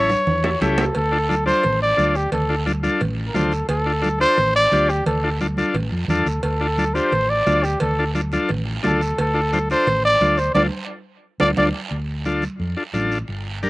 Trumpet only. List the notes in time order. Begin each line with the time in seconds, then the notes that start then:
Already playing: C#5
0.63 A4
0.96 A4
1.47 C5
1.82 D5
2.16 G4
2.33 A4
3.28 A#4
3.35 A4
3.69 A4
4.21 C5
4.56 D5
4.90 G4
5.07 A4
6.10 A4
6.44 A4
6.94 C5
7.30 D5
7.64 G4
7.81 A4
8.87 A4
9.21 A4
9.71 C5
10.05 D5
10.38 C5
10.54 D5
11.40 D5
11.58 D5